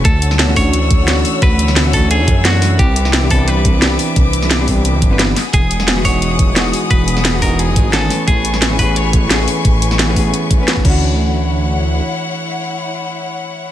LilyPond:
<<
  \new Staff \with { instrumentName = "String section" } { \time 4/4 \key d \lydian \tempo 4 = 175 <cis'' fis'' e'''>1~ | <cis'' fis'' e'''>1 | <b' e'' d'''>1~ | <b' e'' d'''>2.~ <b' e'' d'''>8 <gis' fis'' dis'''>8~ |
<gis' fis'' dis'''>1~ | <gis' fis'' dis'''>2.~ <gis' fis'' dis'''>8 <b' gis'' cis'''>8~ | <b' gis'' cis'''>1~ | <b' gis'' cis'''>2.~ <b' gis'' cis'''>8 <e' cis'' fis''>8~ |
<e' cis'' fis''>1~ | <e' cis'' fis''>1 | }
  \new Staff \with { instrumentName = "Clean electric guitar" } { \time 4/4 \key d \lydian a'4. cis''2~ cis''8 | b'4. a'8 gis'4 fis'4 | g'4. a'8 b'4 r4 | r1 |
gis'4. cis''2~ cis''8 | b'4. bes'8 gis'4 a'4 | gis'4. b'8 cis''4 r4 | r1 |
r1 | r1 | }
  \new Staff \with { instrumentName = "Hollow-body jazz guitar" } { \time 4/4 \key d \lydian r4 r16 <e a cis' d' fis'>16 <e a cis' d' fis'>4. <e a cis' d' fis'>4~ | <e a cis' d' fis'>4~ <e a cis' d' fis'>16 <e a cis' d' fis'>16 <e a cis' d' fis'>4. <e a cis' d' fis'>4 | r4 r16 <e b c' d' g'>16 <e b c' d' g'>4. <e b c' d' g'>4~ | <e b c' d' g'>4~ <e b c' d' g'>16 <e b c' d' g'>16 <e b c' d' g'>4~ <e b c' d' g'>16 <e b c' d' b'>8. r8 |
r4 r16 <e gis b dis' fis'>16 <e gis b dis' fis'>4. <e gis b dis' fis'>4~ | <e gis b dis' fis'>4~ <e gis b dis' fis'>16 <e gis b dis' fis'>16 <e gis b dis' fis'>4. <e a b cis' gis''>4~ | <e a b cis' gis''>4~ <e a b cis' gis''>16 <e a b cis' gis'>16 <e a b cis' gis'>4. <e a b cis' gis'>4~ | <e a b cis' gis'>4~ <e a b cis' gis'>16 <e a b cis' gis'>16 <e a b cis' gis'>4~ <e a b cis' gis'>16 <e a b cis' b'>8. <e a cis' d' fis'>8~ |
<e a cis' d' fis'>1~ | <e a cis' d' fis'>1 | }
  \new Staff \with { instrumentName = "Detuned saw bass" } { \clef bass \time 4/4 \key d \lydian d,2 d,4. r8 | d,2~ d,16 e,16 fis,4. | c,2 c,4. r8 | c,2~ c,16 d,16 g,,4 r8 |
e,,2 e,,4. r8 | e,,2~ e,,16 fis,,16 gis,,4 r8 | a,,2 a,,4. r8 | a,,2 r4. d,8~ |
d,2. r4 | r1 | }
  \new DrumStaff \with { instrumentName = "Drums" } \drummode { \time 4/4 <hh bd>8 hh16 sn16 <hh sn>8 <hho bd>8 hh8 <hh bd>8 <hh sn>8 hho8 | <hh bd>8 hh16 sn16 <hh sn>8 <hho bd>8 hh8 <hh bd>8 <hh sn>8 <hho sn>8 | <hh bd>8 hh16 sn16 <hh sn>8 <hho bd>8 hh8 <hh bd>8 <hh sn>8 hho8 | <hh bd>8 hh16 sn16 <hh sn>8 <hho bd>8 hh8 <hh bd>8 <hh sn>8 <hho sn>8 |
<hh bd>8 hh16 sn16 <hh sn>8 <hho bd>8 hh8 <hh bd>8 <hh sn>8 hho8 | <hh bd>8 hh16 sn16 <hh sn>8 <hho bd>8 hh8 <hh bd>8 <hh sn>8 <hho sn>8 | <hh bd>8 hh16 sn16 <hh sn>8 <hho bd>8 hh8 <hh bd>8 <hh sn>8 hho8 | <hh bd>8 hh16 sn16 <hh sn>8 <hho bd>8 hh8 <hh bd>8 <hh sn>16 bd16 <cymc bd>8 |
r4 r4 r4 r4 | r4 r4 r4 r4 | }
>>